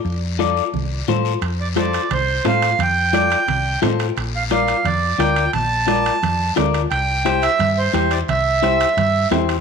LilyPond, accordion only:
\new Staff \with { instrumentName = "Accordion" } { \time 4/4 \key f \major \tempo 4 = 175 r1 | r8 d''8 d''4 c''4 f''4 | g''2. r4 | r8 f''8 f''4 d''4 g''4 |
a''2. r4 | g''4. e''4 c''8 c''8 d''8 | e''2. r4 | }